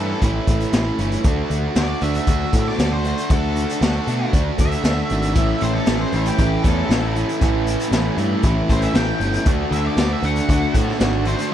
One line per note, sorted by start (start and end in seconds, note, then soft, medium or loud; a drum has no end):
0.00 0.12 G2 medium
0.00 0.21 A2 medium
0.00 0.21 E3 medium
0.00 0.23 A3 medium
0.00 0.22 C#4 medium
0.00 0.23 E4 medium
0.00 0.19 A4 medium
0.21 0.38 A1 medium
0.21 0.73 A2 medium
0.21 0.74 E3 loud
0.21 0.75 A3 medium
0.21 0.74 C#4 loud
0.21 0.75 E4 loud
0.21 kick medium
0.21 closed hi-hat medium
0.47 0.64 A1 medium
0.47 kick medium
0.47 closed hi-hat medium
0.60 closed hi-hat medium
0.73 0.90 A1 medium
0.73 0.98 A2 medium
0.73 0.99 E3 medium
0.73 1.00 A3 medium
0.73 1.00 C#4 medium
0.73 1.00 E4 medium
0.73 snare loud
0.73 closed hi-hat medium
0.99 1.15 G1 medium
0.99 1.23 A2 medium
0.99 1.24 E3 medium
0.99 1.26 A3 medium
0.99 1.24 C#4 medium
0.99 1.24 E4 medium
0.99 closed hi-hat medium
1.12 closed hi-hat medium
1.24 1.41 D2 medium
1.24 1.76 D3 medium
1.24 1.77 A3 medium
1.24 1.77 D4 medium
1.24 1.78 F#4 loud
1.24 kick loud
1.24 closed hi-hat medium
1.50 1.67 D2 medium
1.50 closed hi-hat medium
1.75 1.93 D2 medium
1.75 2.02 D3 medium
1.75 2.03 A3 medium
1.75 2.03 D4 loud
1.75 2.04 F#4 medium
1.75 2.02 D5 medium
1.75 snare loud
1.75 closed hi-hat medium
2.01 2.19 D2 medium
2.01 2.27 D3 medium
2.01 2.29 A3 medium
2.01 2.29 D4 medium
2.01 2.29 F#4 medium
2.01 2.15 E5 medium
2.01 closed hi-hat medium
2.14 2.66 E5 medium
2.14 closed hi-hat medium
2.27 2.44 D2 medium
2.27 2.79 D3 medium
2.27 2.81 A3 loud
2.27 2.79 D4 loud
2.27 2.80 F#4 loud
2.27 kick medium
2.27 closed hi-hat medium
2.53 2.70 A2 medium
2.53 kick medium
2.53 closed hi-hat medium
2.67 2.92 D5 medium
2.67 snare soft
2.79 3.12 D2 medium
2.79 3.04 D3 medium
2.79 3.06 A3 medium
2.79 3.05 D4 medium
2.79 3.06 F#4 loud
2.79 snare loud
2.79 closed hi-hat medium
2.93 3.30 C5 medium
3.05 3.29 D3 medium
3.05 3.31 A3 medium
3.05 3.30 D4 medium
3.05 3.31 F#4 medium
3.05 closed hi-hat medium
3.18 closed hi-hat medium
3.30 3.63 D2 medium
3.30 3.81 D3 loud
3.30 3.82 A3 medium
3.30 3.83 D4 loud
3.30 3.82 F#4 loud
3.30 4.31 A4 loud
3.30 kick loud
3.30 closed hi-hat medium
3.56 closed hi-hat medium
3.70 closed hi-hat medium
3.81 3.98 D2 medium
3.81 4.07 D3 medium
3.81 4.09 A3 medium
3.81 4.08 D4 medium
3.81 4.08 F#4 medium
3.81 snare loud
3.81 closed hi-hat medium
4.07 4.24 B2 medium
4.07 4.32 D3 medium
4.07 4.34 A3 medium
4.07 4.34 D4 medium
4.07 4.34 F#4 medium
4.07 closed hi-hat medium
4.33 4.50 D2 medium
4.33 4.84 D3 loud
4.33 4.85 A3 medium
4.33 4.85 D4 medium
4.33 4.85 F#4 loud
4.33 kick medium
4.33 closed hi-hat medium
4.58 4.75 D2 medium
4.58 5.60 E5 loud
4.58 kick medium
4.58 closed hi-hat medium
4.72 closed hi-hat medium
4.84 5.01 D2 medium
4.84 5.11 D3 medium
4.84 5.12 A3 medium
4.84 5.11 D4 medium
4.84 5.12 F#4 medium
4.84 snare loud
4.84 closed hi-hat medium
5.10 5.35 G#1 medium
5.10 5.35 D3 medium
5.10 5.37 A3 medium
5.10 5.36 D4 medium
5.10 5.36 F#4 medium
5.10 closed hi-hat medium
5.23 closed hi-hat medium
5.35 5.52 A1 medium
5.35 5.87 A2 medium
5.35 5.88 E3 medium
5.35 5.89 A3 loud
5.35 5.89 C#4 loud
5.35 5.89 E4 loud
5.35 6.63 A4 loud
5.35 kick loud
5.35 closed hi-hat medium
5.61 5.79 A1 medium
5.61 5.75 C5 medium
5.61 closed hi-hat medium
5.75 6.00 A4 medium
5.86 6.04 A1 medium
5.86 6.13 A2 medium
5.86 6.14 E3 medium
5.86 6.15 A3 medium
5.86 6.16 C#4 medium
5.86 6.16 E4 medium
5.86 snare loud
5.86 closed hi-hat medium
6.01 6.26 C5 medium
6.13 6.29 A1 medium
6.13 6.39 A2 medium
6.13 6.39 E3 medium
6.13 6.40 A3 medium
6.13 6.40 C#4 medium
6.13 6.41 E4 medium
6.13 closed hi-hat medium
6.26 6.64 G4 medium
6.26 closed hi-hat medium
6.38 6.55 A1 medium
6.38 6.89 A2 medium
6.38 6.90 E3 loud
6.38 6.91 A3 loud
6.38 6.91 C#4 loud
6.38 6.91 E4 loud
6.38 kick medium
6.38 closed hi-hat medium
6.63 6.81 E2 medium
6.63 6.88 A2 medium
6.63 6.89 E3 medium
6.63 6.90 A3 medium
6.63 6.89 C#4 medium
6.63 6.88 E4 medium
6.63 6.91 A4 medium
6.63 7.15 A4 loud
6.63 kick medium
6.63 closed hi-hat medium
6.89 7.23 A1 medium
6.89 7.14 A2 medium
6.89 7.15 E3 medium
6.89 7.16 A3 medium
6.89 7.16 C#4 medium
6.89 7.16 E4 medium
6.89 7.43 A4 medium
6.89 snare loud
6.89 closed hi-hat medium
7.16 7.40 A2 medium
7.16 7.40 E3 medium
7.16 7.42 A3 medium
7.16 7.41 C#4 medium
7.16 7.42 E4 medium
7.16 closed hi-hat medium
7.29 closed hi-hat medium
7.41 7.75 A1 medium
7.41 7.91 A2 medium
7.41 7.92 E3 medium
7.41 7.93 A3 medium
7.41 7.92 C#4 loud
7.41 7.93 E4 loud
7.41 8.69 A4 loud
7.41 kick loud
7.41 closed hi-hat medium
7.67 closed hi-hat medium
7.80 closed hi-hat medium
7.91 8.08 A1 medium
7.91 8.17 A2 medium
7.91 8.18 E3 medium
7.91 8.18 A3 medium
7.91 8.18 C#4 medium
7.91 8.19 E4 loud
7.91 snare loud
7.91 closed hi-hat medium
8.17 8.34 G2 medium
8.17 8.42 A2 medium
8.17 8.43 E3 medium
8.17 8.45 A3 medium
8.17 8.44 C#4 medium
8.17 8.45 E4 medium
8.17 closed hi-hat medium
8.43 8.60 A1 medium
8.43 8.93 A2 loud
8.43 8.94 E3 medium
8.43 8.95 A3 loud
8.43 8.95 C#4 loud
8.43 8.95 E4 loud
8.43 kick medium
8.43 closed hi-hat medium
8.69 8.86 A1 medium
8.69 8.94 A2 medium
8.69 8.94 E3 medium
8.69 8.96 A3 medium
8.69 8.94 C#4 medium
8.69 8.94 E4 medium
8.69 8.97 A4 medium
8.69 8.83 C5 medium
8.69 kick medium
8.69 closed hi-hat medium
8.82 8.95 E5 medium
8.82 closed hi-hat medium
8.94 9.11 A1 medium
8.94 9.19 A2 medium
8.94 9.20 E3 medium
8.94 9.21 A3 loud
8.94 9.20 C#4 medium
8.94 9.21 E4 medium
8.94 9.48 A4 medium
8.94 9.46 G5 medium
8.94 snare loud
8.94 closed hi-hat medium
9.20 9.37 G1 medium
9.20 9.45 A2 medium
9.20 9.46 E3 medium
9.20 9.47 A3 medium
9.20 9.46 C#4 medium
9.20 9.46 E4 medium
9.20 closed hi-hat medium
9.34 closed hi-hat medium
9.46 9.63 D2 loud
9.46 9.98 D3 loud
9.46 9.99 A3 loud
9.46 9.99 D4 loud
9.46 10.00 F#4 loud
9.46 10.74 A4 loud
9.46 kick loud
9.46 closed hi-hat medium
9.71 9.88 D2 medium
9.71 9.87 E5 medium
9.71 closed hi-hat medium
9.87 10.11 D5 loud
9.97 10.14 D2 medium
9.97 10.23 D3 medium
9.97 10.24 A3 medium
9.97 10.24 D4 medium
9.97 10.25 F#4 medium
9.97 snare loud
9.97 closed hi-hat medium
10.13 10.25 E5 medium
10.23 10.40 D2 medium
10.23 10.48 D3 medium
10.23 10.50 A3 medium
10.23 10.49 D4 medium
10.23 10.50 F#4 medium
10.23 10.74 F#5 loud
10.23 closed hi-hat medium
10.36 closed hi-hat medium
10.49 10.65 D2 medium
10.49 10.98 D3 loud
10.49 11.00 A3 loud
10.49 11.00 D4 loud
10.49 11.00 F#4 loud
10.49 kick medium
10.49 closed hi-hat medium
10.74 10.91 A2 medium
10.74 10.98 D3 medium
10.74 11.00 A3 medium
10.74 10.99 D4 medium
10.74 10.99 F#4 medium
10.74 11.01 A4 medium
10.74 kick medium
10.74 closed hi-hat medium
10.88 snare soft
11.00 11.34 G#1 medium
11.00 11.26 D3 loud
11.00 11.27 A3 medium
11.00 11.27 D4 medium
11.00 11.27 F#4 medium
11.00 11.53 A4 medium
11.00 snare loud
11.00 closed hi-hat medium
11.25 11.51 D3 medium
11.25 11.51 A3 medium
11.25 11.52 D4 loud
11.25 11.52 F#4 medium
11.25 11.52 C5 medium
11.25 closed hi-hat medium
11.38 closed hi-hat medium